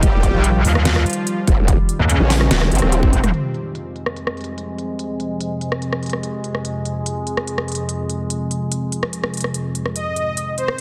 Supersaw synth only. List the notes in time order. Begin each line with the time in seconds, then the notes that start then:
0.03 G3 G4
0.65 F3 F4
2.10 C#3 C#4
2.72 C3 C4
9.96 D#5
10.58 C5